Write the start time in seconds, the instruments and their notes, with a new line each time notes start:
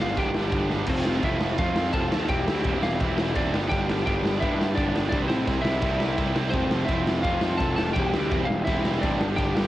Already playing: overdriven electric guitar G2 D3 G3
0.00 picked electric bass G1, distorted electric guitar G2 D3 G3 B3 D4, lead electric guitar F4 F5
0.17 picked electric bass G1, distorted electric guitar G2 D3 G3 B3 D4, lead electric guitar G4 G5, kick, crash
0.34 distorted electric guitar G2 D3 G3 B3 D4, snare
0.52 picked electric bass G1, distorted electric guitar G2 D3 G3 B3 D4, kick, crash
0.68 distorted electric guitar G2 D3 G3, snare
0.72 distorted electric guitar G2 D3 G3 B3 D4
0.86 picked electric bass F1, distorted electric guitar F2 C3 F3 A3 C4 F4, lead electric guitar C4 C5, kick, crash
1.05 picked electric bass F1, distorted electric guitar F2 C3 F3 A3 C4 F4, snare
1.22 picked electric bass F1, distorted electric guitar F2 C3 F3 A3 C4 F4, lead electric guitar E4 E5, kick, crash
1.41 distorted electric guitar F2 C3 F3 A3 C4 F4, snare
1.58 picked electric bass F2, distorted electric guitar F2 C3 F3 A3 C4 F4, lead electric guitar F4 F5, kick, crash
1.76 distorted electric guitar F2 C3 F3 A3 C4 F4, snare
1.93 picked electric bass F1, distorted electric guitar F2 C3 F3 A3 C4 F4, lead electric guitar A4 A5, kick, crash
2.11 picked electric bass D#2, distorted electric guitar F2 C3 F3 A3 C4 F4, snare
2.28 picked electric bass E1, distorted electric guitar C3 E3, lead electric guitar G4 G5, kick, crash
2.32 distorted electric guitar G3 C4 E4
2.46 picked electric bass D2, distorted electric guitar C3 E3 G3 E4, snare
2.50 distorted electric guitar C4
2.64 picked electric bass E1, distorted electric guitar C3 E3 G3 C4, kick, crash
2.68 distorted electric guitar E4
2.80 picked electric bass E1, distorted electric guitar C3 E3 G3, lead electric guitar F5, snare
2.84 distorted electric guitar G3 C4 E4, lead electric guitar F4
2.99 picked electric bass E1, distorted electric guitar C3 E3 G3 C4 E4, lead electric guitar E5, kick, crash
3.03 lead electric guitar E4
3.16 distorted electric guitar C3 E3 G3 C4, snare
3.20 distorted electric guitar E4
3.34 picked electric bass E1, distorted electric guitar C3 E3 G3, lead electric guitar D5, kick, crash
3.38 distorted electric guitar G3 C4 E4, lead electric guitar D4
3.52 picked electric bass G1, distorted electric guitar G2 D3 G3 B3 D4, snare
3.69 picked electric bass G1, distorted electric guitar G2 D3 G3 D4, lead electric guitar G4 G5, kick, crash
3.74 distorted electric guitar B3
3.88 picked electric bass G1, distorted electric guitar G2 D3 G3 B3 D4, snare
4.06 picked electric bass G1, distorted electric guitar G2 D3 G3 B3 D4, lead electric guitar G4 G5, kick, crash
4.24 distorted electric guitar G2 D3 G3 B3 D4, snare
4.40 distorted electric guitar G2 D3 G3 B3 D4, picked electric bass G2, lead electric guitar E4 E5, kick, crash
4.58 distorted electric guitar G2 D3 G3 B3 D4, snare
4.75 picked electric bass G1, distorted electric guitar G2 D3 G3 B3 D4, lead electric guitar D5, kick, crash
4.80 lead electric guitar D4
4.94 picked electric bass G1, distorted electric guitar G2 D3 G3 B3 D4, snare
5.09 picked electric bass C2, distorted electric guitar G3, lead electric guitar D5, kick, crash
5.13 distorted electric guitar C3 C4 E4, lead electric guitar D4
5.24 lead electric guitar B4
5.28 picked electric bass A2, distorted electric guitar C3 G3 C4 E4, lead electric guitar C4 C5, snare
5.47 picked electric bass C2, distorted electric guitar C3 G3 C4 E4, kick, crash
5.62 picked electric bass C2, lead electric guitar E4 E5, snare
5.66 distorted electric guitar C3 G3 C4 E4
5.82 picked electric bass C2, distorted electric guitar C3 G3 C4 E4, kick, crash
5.97 distorted electric guitar C3 G3 C4, snare
6.01 distorted electric guitar C3 G3 C4 E4
6.18 picked electric bass C2, distorted electric guitar C3 G3 C4 E4, kick, crash
6.36 distorted electric guitar C3 G3 C4 E4, snare
6.50 picked electric bass F1, distorted electric guitar F2 C3, lead electric guitar C5, kick, crash
6.55 distorted electric guitar F3 A3 C4 F4, lead electric guitar C4
6.70 picked electric bass F1, distorted electric guitar F2 C3 F3 A3 C4 F4, snare
6.85 distorted electric guitar F2 C3, lead electric guitar E5, crash
6.89 picked electric bass F1, distorted electric guitar F3 A3 C4 F4, lead electric guitar E4, kick
7.06 distorted electric guitar F2 C3 F3 A3 C4 F4, snare
7.23 picked electric bass F2, distorted electric guitar F2 C3 F3 A3, lead electric guitar F5, kick, crash
7.27 distorted electric guitar C4 F4, lead electric guitar F4
7.41 distorted electric guitar F2 C3 F3 A3 C4, snare
7.45 distorted electric guitar F4
7.58 picked electric bass F1, distorted electric guitar F2 C3 F3, lead electric guitar A5, kick, crash
7.62 distorted electric guitar A3 C4 F4, lead electric guitar A4
7.76 picked electric bass F1, distorted electric guitar F2 C3 F3 A3 C4 F4, lead electric guitar A4 A5, snare
7.93 picked electric bass E1, distorted electric guitar C3 E3 G3 C4, lead electric guitar G5, kick, crash
7.98 distorted electric guitar E4, lead electric guitar G4
8.12 picked electric bass D2, distorted electric guitar C3 E3 G3 C4 E4, snare
8.31 picked electric bass E1, distorted electric guitar C3 E3 G3 C4 E4, kick, crash
8.45 picked electric bass E1, distorted electric guitar C3, lead electric guitar F5
8.50 distorted electric guitar E3 G3 C4 E4, lead electric guitar F4, snare
8.64 picked electric bass E1, distorted electric guitar C3 E3 G3, lead electric guitar E5, kick, crash
8.69 distorted electric guitar C4 E4, lead electric guitar E4
8.83 distorted electric guitar C3 E3 G3 C4 E4, snare
9.02 picked electric bass A1, distorted electric guitar C3 E3 G3 C4, lead electric guitar D4 D5, kick, crash
9.06 distorted electric guitar E4
9.21 picked electric bass G1, distorted electric guitar G2 D3 G3 B3 D4, snare
9.36 picked electric bass G1, distorted electric guitar G2 D3 G3 B3, lead electric guitar G4 G5, kick, crash
9.41 distorted electric guitar D4
9.54 picked electric bass G1, distorted electric guitar G2 D3 G3 B3 D4, snare